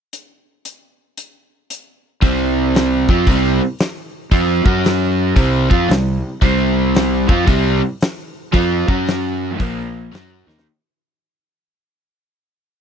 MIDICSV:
0, 0, Header, 1, 4, 480
1, 0, Start_track
1, 0, Tempo, 525855
1, 109, Time_signature, 4, 2, 24, 8
1, 6349, Tempo, 530035
1, 11643, End_track
2, 0, Start_track
2, 0, Title_t, "Overdriven electric guitar"
2, 0, Program_c, 0, 29
2, 2023, Note_on_c, 0, 48, 98
2, 2029, Note_on_c, 0, 55, 88
2, 2034, Note_on_c, 0, 60, 101
2, 2807, Note_off_c, 0, 48, 0
2, 2810, Note_off_c, 0, 55, 0
2, 2812, Note_off_c, 0, 60, 0
2, 2823, Note_on_c, 0, 53, 79
2, 2827, Note_on_c, 0, 60, 87
2, 2830, Note_on_c, 0, 65, 92
2, 2981, Note_off_c, 0, 53, 0
2, 2984, Note_on_c, 0, 48, 95
2, 2985, Note_off_c, 0, 60, 0
2, 2986, Note_off_c, 0, 65, 0
2, 2993, Note_on_c, 0, 55, 88
2, 2999, Note_on_c, 0, 60, 105
2, 3287, Note_off_c, 0, 48, 0
2, 3291, Note_off_c, 0, 55, 0
2, 3294, Note_off_c, 0, 60, 0
2, 3941, Note_on_c, 0, 53, 92
2, 3944, Note_on_c, 0, 60, 100
2, 3946, Note_on_c, 0, 65, 99
2, 4240, Note_off_c, 0, 53, 0
2, 4244, Note_on_c, 0, 54, 85
2, 4246, Note_off_c, 0, 60, 0
2, 4247, Note_off_c, 0, 65, 0
2, 4250, Note_on_c, 0, 61, 92
2, 4256, Note_on_c, 0, 66, 95
2, 4887, Note_off_c, 0, 54, 0
2, 4889, Note_off_c, 0, 61, 0
2, 4890, Note_on_c, 0, 48, 91
2, 4893, Note_off_c, 0, 66, 0
2, 4893, Note_on_c, 0, 55, 90
2, 4897, Note_on_c, 0, 60, 101
2, 5196, Note_off_c, 0, 48, 0
2, 5197, Note_off_c, 0, 60, 0
2, 5199, Note_on_c, 0, 53, 79
2, 5201, Note_off_c, 0, 55, 0
2, 5208, Note_on_c, 0, 60, 92
2, 5210, Note_on_c, 0, 65, 98
2, 5369, Note_off_c, 0, 53, 0
2, 5373, Note_on_c, 0, 48, 61
2, 5375, Note_off_c, 0, 60, 0
2, 5376, Note_off_c, 0, 65, 0
2, 5378, Note_on_c, 0, 55, 67
2, 5629, Note_off_c, 0, 48, 0
2, 5631, Note_off_c, 0, 55, 0
2, 5858, Note_on_c, 0, 55, 95
2, 5861, Note_on_c, 0, 48, 84
2, 5867, Note_on_c, 0, 60, 107
2, 6641, Note_off_c, 0, 48, 0
2, 6642, Note_off_c, 0, 60, 0
2, 6644, Note_off_c, 0, 55, 0
2, 6645, Note_on_c, 0, 53, 85
2, 6653, Note_on_c, 0, 60, 83
2, 6656, Note_on_c, 0, 65, 100
2, 6800, Note_off_c, 0, 53, 0
2, 6803, Note_on_c, 0, 48, 86
2, 6806, Note_off_c, 0, 60, 0
2, 6810, Note_on_c, 0, 55, 100
2, 6817, Note_off_c, 0, 65, 0
2, 6820, Note_on_c, 0, 60, 95
2, 7116, Note_off_c, 0, 48, 0
2, 7119, Note_off_c, 0, 55, 0
2, 7124, Note_off_c, 0, 60, 0
2, 7772, Note_on_c, 0, 53, 90
2, 7781, Note_on_c, 0, 60, 91
2, 7784, Note_on_c, 0, 65, 110
2, 8080, Note_off_c, 0, 53, 0
2, 8085, Note_off_c, 0, 60, 0
2, 8086, Note_off_c, 0, 65, 0
2, 8093, Note_on_c, 0, 54, 89
2, 8096, Note_on_c, 0, 61, 84
2, 8099, Note_on_c, 0, 66, 97
2, 8739, Note_off_c, 0, 54, 0
2, 8739, Note_on_c, 0, 46, 90
2, 8744, Note_off_c, 0, 61, 0
2, 8744, Note_on_c, 0, 53, 99
2, 8746, Note_off_c, 0, 66, 0
2, 8746, Note_on_c, 0, 58, 93
2, 9208, Note_off_c, 0, 46, 0
2, 9211, Note_on_c, 0, 54, 79
2, 9216, Note_off_c, 0, 53, 0
2, 9219, Note_off_c, 0, 58, 0
2, 9219, Note_on_c, 0, 61, 87
2, 9222, Note_on_c, 0, 66, 90
2, 9520, Note_off_c, 0, 54, 0
2, 9524, Note_off_c, 0, 61, 0
2, 9526, Note_off_c, 0, 66, 0
2, 9527, Note_on_c, 0, 51, 80
2, 9535, Note_on_c, 0, 58, 96
2, 9539, Note_on_c, 0, 63, 87
2, 9694, Note_off_c, 0, 51, 0
2, 9698, Note_off_c, 0, 58, 0
2, 9700, Note_off_c, 0, 63, 0
2, 11643, End_track
3, 0, Start_track
3, 0, Title_t, "Fingered electric bass"
3, 0, Program_c, 1, 33
3, 2028, Note_on_c, 1, 36, 83
3, 2782, Note_off_c, 1, 36, 0
3, 2819, Note_on_c, 1, 41, 85
3, 2974, Note_off_c, 1, 41, 0
3, 2984, Note_on_c, 1, 36, 85
3, 3274, Note_off_c, 1, 36, 0
3, 3939, Note_on_c, 1, 41, 87
3, 4231, Note_off_c, 1, 41, 0
3, 4248, Note_on_c, 1, 42, 85
3, 4863, Note_off_c, 1, 42, 0
3, 4896, Note_on_c, 1, 36, 89
3, 5190, Note_off_c, 1, 36, 0
3, 5213, Note_on_c, 1, 41, 82
3, 5370, Note_off_c, 1, 41, 0
3, 5376, Note_on_c, 1, 36, 79
3, 5670, Note_off_c, 1, 36, 0
3, 5859, Note_on_c, 1, 36, 85
3, 6618, Note_off_c, 1, 36, 0
3, 6653, Note_on_c, 1, 41, 85
3, 6811, Note_off_c, 1, 41, 0
3, 6820, Note_on_c, 1, 36, 93
3, 7112, Note_off_c, 1, 36, 0
3, 7777, Note_on_c, 1, 41, 89
3, 8069, Note_off_c, 1, 41, 0
3, 8096, Note_on_c, 1, 42, 87
3, 8707, Note_off_c, 1, 42, 0
3, 8747, Note_on_c, 1, 34, 90
3, 9191, Note_off_c, 1, 34, 0
3, 9225, Note_on_c, 1, 42, 90
3, 9515, Note_off_c, 1, 42, 0
3, 9532, Note_on_c, 1, 39, 91
3, 9690, Note_off_c, 1, 39, 0
3, 11643, End_track
4, 0, Start_track
4, 0, Title_t, "Drums"
4, 119, Note_on_c, 9, 42, 53
4, 211, Note_off_c, 9, 42, 0
4, 595, Note_on_c, 9, 42, 57
4, 687, Note_off_c, 9, 42, 0
4, 1072, Note_on_c, 9, 42, 60
4, 1164, Note_off_c, 9, 42, 0
4, 1554, Note_on_c, 9, 42, 62
4, 1646, Note_off_c, 9, 42, 0
4, 2030, Note_on_c, 9, 36, 97
4, 2038, Note_on_c, 9, 46, 50
4, 2121, Note_off_c, 9, 36, 0
4, 2129, Note_off_c, 9, 46, 0
4, 2505, Note_on_c, 9, 46, 58
4, 2522, Note_on_c, 9, 38, 108
4, 2597, Note_off_c, 9, 46, 0
4, 2613, Note_off_c, 9, 38, 0
4, 2817, Note_on_c, 9, 36, 99
4, 2909, Note_off_c, 9, 36, 0
4, 2984, Note_on_c, 9, 36, 106
4, 2985, Note_on_c, 9, 46, 62
4, 3075, Note_off_c, 9, 36, 0
4, 3076, Note_off_c, 9, 46, 0
4, 3456, Note_on_c, 9, 46, 60
4, 3473, Note_on_c, 9, 38, 120
4, 3548, Note_off_c, 9, 46, 0
4, 3564, Note_off_c, 9, 38, 0
4, 3939, Note_on_c, 9, 36, 90
4, 3939, Note_on_c, 9, 46, 53
4, 4030, Note_off_c, 9, 46, 0
4, 4031, Note_off_c, 9, 36, 0
4, 4250, Note_on_c, 9, 36, 105
4, 4342, Note_off_c, 9, 36, 0
4, 4421, Note_on_c, 9, 46, 55
4, 4438, Note_on_c, 9, 38, 109
4, 4513, Note_off_c, 9, 46, 0
4, 4529, Note_off_c, 9, 38, 0
4, 4896, Note_on_c, 9, 36, 105
4, 4897, Note_on_c, 9, 46, 56
4, 4988, Note_off_c, 9, 36, 0
4, 4988, Note_off_c, 9, 46, 0
4, 5211, Note_on_c, 9, 36, 103
4, 5302, Note_off_c, 9, 36, 0
4, 5382, Note_on_c, 9, 46, 53
4, 5398, Note_on_c, 9, 38, 113
4, 5473, Note_off_c, 9, 46, 0
4, 5489, Note_off_c, 9, 38, 0
4, 5859, Note_on_c, 9, 36, 94
4, 5862, Note_on_c, 9, 46, 49
4, 5950, Note_off_c, 9, 36, 0
4, 5953, Note_off_c, 9, 46, 0
4, 6341, Note_on_c, 9, 46, 57
4, 6357, Note_on_c, 9, 38, 114
4, 6432, Note_off_c, 9, 46, 0
4, 6448, Note_off_c, 9, 38, 0
4, 6652, Note_on_c, 9, 36, 105
4, 6742, Note_off_c, 9, 36, 0
4, 6820, Note_on_c, 9, 36, 111
4, 6824, Note_on_c, 9, 46, 58
4, 6910, Note_off_c, 9, 36, 0
4, 6914, Note_off_c, 9, 46, 0
4, 7302, Note_on_c, 9, 46, 63
4, 7318, Note_on_c, 9, 38, 116
4, 7392, Note_off_c, 9, 46, 0
4, 7409, Note_off_c, 9, 38, 0
4, 7782, Note_on_c, 9, 46, 53
4, 7783, Note_on_c, 9, 36, 95
4, 7872, Note_off_c, 9, 46, 0
4, 7873, Note_off_c, 9, 36, 0
4, 8096, Note_on_c, 9, 36, 100
4, 8187, Note_off_c, 9, 36, 0
4, 8263, Note_on_c, 9, 46, 54
4, 8279, Note_on_c, 9, 38, 110
4, 8354, Note_off_c, 9, 46, 0
4, 8370, Note_off_c, 9, 38, 0
4, 8743, Note_on_c, 9, 36, 104
4, 8750, Note_on_c, 9, 46, 59
4, 8834, Note_off_c, 9, 36, 0
4, 8841, Note_off_c, 9, 46, 0
4, 9226, Note_on_c, 9, 46, 55
4, 9242, Note_on_c, 9, 38, 109
4, 9317, Note_off_c, 9, 46, 0
4, 9333, Note_off_c, 9, 38, 0
4, 9552, Note_on_c, 9, 38, 56
4, 9636, Note_off_c, 9, 38, 0
4, 9636, Note_on_c, 9, 38, 84
4, 9727, Note_off_c, 9, 38, 0
4, 11643, End_track
0, 0, End_of_file